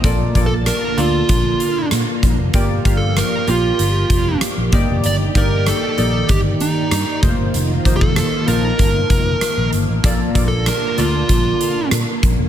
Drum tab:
HH |x-x-x-x-x-x-x-x-|x-x-x-x-x-x-x-x-|x-x-x-x-x-x-x-x-|x-x-x-x-x-x-x-x-|
SD |----r-------r---|----r-------r---|----r-------r---|----r-------r---|
BD |o-o-----o-----o-|o-o-------o---o-|--o-----o-----o-|--oo----o-o-----|

HH |x-x-x-x-x-x-x-x-|
SD |----r-------r---|
BD |o-o-----o-----o-|